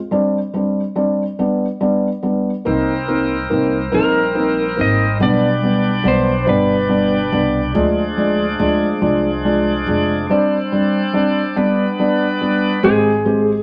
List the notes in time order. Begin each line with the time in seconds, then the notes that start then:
0.11 G3 C4 D4
0.54 G3 C4 D4
0.95 G3 C4 D4
1.39 G3 B3 D4
1.81 G3 B3 D4
2.23 G3 B3 D4
2.65 C2 G3 A#3 C4 D#4 A#4 C5
3.08 A#3 C4 D#4
3.50 C2 A#3 C4 D#4
3.92 A#1 A#3 C4 D#4 A#4
4.35 A#3 C4 D#4
4.76 G#1 A#3 C4 D#4
4.81 D#5
5.20 B1 B2 G3 B3 D4 G4 D5
5.63 G3 B3 D4
6.03 B1 G3 B3 D4
6.08 C5
6.46 G1 G3 B3 D4 B4
6.88 G3 B3 D4
7.32 C2 G3 B3 D4
7.74 D2 F3 G#3 D4 G#4 D5
8.17 F3 G#3 D4
8.59 D2 F3 G#3 D4
9.01 C2 F3 G#3 D4
9.44 F3 G#3 D4
9.87 F1 F3 G#3 D4
10.30 G3 C4 D4 C5
10.72 G3 C4 D4
11.13 G3 C4 D4
11.56 G3 B3 D4 B4
11.99 G3 B3 D4
12.41 G3 B3 D4
12.83 G#1 G#3 C4 G4 G#4
13.25 G#3 C4 G4